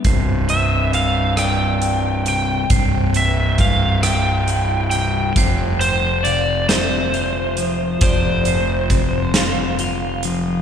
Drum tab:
HH |xxxxxx|xxxxxx|xxxxxx|xxxxxx|
SD |---r--|---r--|---o--|---o--|
BD |o-----|o-o---|o-----|o-o---|